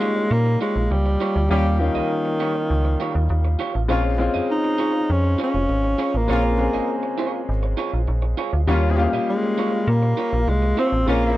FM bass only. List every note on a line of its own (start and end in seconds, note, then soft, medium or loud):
0.31 0.57 A#2 loud
0.76 0.89 A#1 medium
0.91 1.17 C#2 medium
1.36 1.49 D2 medium
1.51 1.90 D#2 loud
1.96 2.02 C#2 soft
2.70 2.96 C#2 medium
3.15 3.28 D#2 medium
3.30 3.56 D#2 medium
3.75 3.88 A1 medium
3.90 4.29 A#1 loud
4.35 4.41 F2 soft
5.10 5.36 F2 medium
5.54 5.67 F1 loud
5.70 5.95 G#1 medium
6.14 6.27 A1 medium
6.29 6.68 A#1 loud
6.75 6.80 G#1 soft
7.49 7.75 G#1 loud
7.93 8.07 A#1 medium
8.08 8.35 A#1 medium
8.53 8.66 D2 medium
8.68 9.07 D#2 loud
9.13 9.19 A#2 soft
9.88 10.14 A#2 loud
10.33 10.46 A#1 loud
10.48 10.74 C2 medium
10.92 11.06 A1 medium
11.07 11.37 A#1 loud